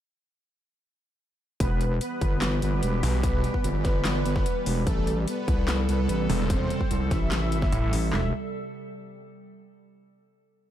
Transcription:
1.60 wobble bass E1, ambient pad E3 G3 G4, supersaw synth B3 B4, kick, closed hi-hat
1.81 closed hi-hat
2.01 supersaw synth B3 B4, closed hi-hat
2.21 wobble bass G1, kick, closed hi-hat
2.42 snare, clap, closed hi-hat
2.62 wobble bass G1, supersaw synth B3 B4, closed hi-hat
2.83 wobble bass E1, closed hi-hat
3.03 detuned saw bass B1, open hi-hat
3.23 supersaw synth B3 B4, kick, closed hi-hat
3.44 closed hi-hat
3.54 kick
3.64 wobble bass G1, closed hi-hat
3.85 wobble bass G1, supersaw synth B3 B4, kick, snare, closed hi-hat
4.05 snare, clap, closed hi-hat
4.26 wobble bass G1, closed hi-hat
4.36 kick, snare
4.46 closed hi-hat
4.66 wobble bass E1, open hi-hat
4.87 wobble bass A1, ambient pad C3 A4, supersaw synth A3 A4, kick, closed hi-hat
5.07 closed hi-hat
5.27 supersaw synth B3 B4, closed hi-hat
5.48 wobble bass C2, kick, closed hi-hat
5.68 snare, clap, closed hi-hat
5.89 wobble bass C2, supersaw synth B3 B4, closed hi-hat
6.09 wobble bass A1, closed hi-hat
6.30 detuned saw bass E1, open hi-hat
6.50 supersaw synth C4 C5, kick, closed hi-hat
6.70 closed hi-hat
6.81 kick
6.91 wobble bass C2, closed hi-hat
7.11 wobble bass A1, supersaw synth E4 E5, kick, snare, closed hi-hat
7.32 snare, clap, closed hi-hat
7.52 wobble bass G#1, closed hi-hat
7.62 kick, snare
7.72 detuned saw bass A1, closed hi-hat
7.93 wobble bass A1, open hi-hat
8.13 wobble bass E1, supersaw synth E5, snare, clap, floor tom

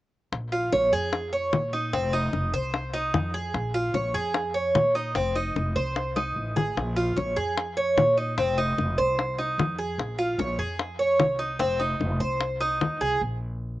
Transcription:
0.32 upright bass A#1, high bongo
0.52 cuban tres F4
0.72 upright bass A#1, cuban tres C#5, high bongo
0.93 upright bass F2, cuban tres G#4
1.13 high bongo
1.33 cuban tres C#5
1.52 upright bass A#2, high bongo, low bongo
1.73 cuban tres D#4
1.93 upright bass F1, cuban tres C4, high bongo
2.13 cuban tres D#4, high bongo
2.33 upright bass F1, high bongo
2.54 upright bass C2, cuban tres C5, high bongo
2.74 high bongo
2.94 cuban tres D#4, high bongo
3.14 upright bass F2, high bongo, low bongo
3.34 cuban tres G#4
3.54 upright bass A#1, high bongo
3.74 cuban tres F4
3.94 upright bass A#1, cuban tres C#5, high bongo
4.14 upright bass F2, cuban tres G#4
4.34 high bongo
4.54 cuban tres C#5
4.75 upright bass A#2, high bongo, low bongo
4.95 cuban tres D#4
5.15 upright bass F1, cuban tres C4, high bongo
5.36 cuban tres D#4, high bongo
5.56 upright bass F1, high bongo
5.76 upright bass C2, cuban tres C5, high bongo
5.96 high bongo
6.16 cuban tres D#4, high bongo
6.36 upright bass A1
6.56 cuban tres G#4, low bongo
6.77 upright bass A#1, high bongo
6.96 cuban tres F4
7.16 upright bass A#1, cuban tres C#5, high bongo
7.36 upright bass F2, cuban tres G#4
7.57 high bongo
7.77 cuban tres C#5
7.97 upright bass A#2, high bongo, low bongo
8.17 cuban tres D#4
8.38 upright bass F1, cuban tres C4, high bongo
8.58 cuban tres D#4, high bongo
8.78 upright bass F1, high bongo
8.98 upright bass C2, cuban tres C5, high bongo
9.19 high bongo
9.38 cuban tres D#4, high bongo
9.58 upright bass F2, high bongo, low bongo
9.79 cuban tres G#4
9.98 upright bass A#1, high bongo
10.19 cuban tres F4
10.38 upright bass A#1, cuban tres C#5, high bongo
10.58 upright bass F2, cuban tres G#4
10.79 high bongo
10.99 cuban tres C#5
11.19 upright bass C2, high bongo, low bongo
11.39 cuban tres D#4
11.59 upright bass F1, cuban tres C4, high bongo
11.80 cuban tres D#4, high bongo
12.00 upright bass F1, high bongo
12.20 upright bass C2, cuban tres C5, high bongo
12.41 high bongo
12.61 cuban tres D#4, high bongo
12.81 upright bass D#2, high bongo, low bongo
13.01 upright bass C2, cuban tres G#4
13.21 upright bass A#1

